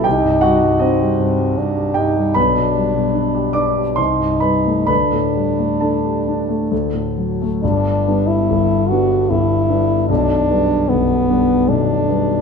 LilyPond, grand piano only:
<<
  \new Staff \with { instrumentName = "Grand piano" } { \time 3/4 \key g \major \tempo 4 = 75 <g' g''>8 <fis' fis''>8 <ees' ees''>4 r8 <g' g''>8 | <b' b''>4. <d'' d'''>8 <c'' c'''>8 <b' b''>8 | <b' b''>4 <a' a''>4. r8 | r2. |
r2. | }
  \new Staff \with { instrumentName = "Grand piano" } { \clef bass \time 3/4 \key g \major c,16 g,16 g16 g,16 c'16 g16 g,16 g16 g,16 g16 g,16 g16 | b,,16 b,16 g16 b,16 d'16 g'16 d'16 g'16 c,16 g,16 g16 a16 | d,16 a,16 g16 a16 d'16 g'16 d'16 a16 d,16 a,16 fis16 a16 | <g,, g,>8 <g b d'>8 <g,, g,>8 <g b d'>8 <g,, g,>8 <g b d'>8 |
<b,,, b,,>8 <g b d'>8 <b,,, b,,>8 <g b d'>8 <b,,, b,,>8 <g b d'>8 | }
>>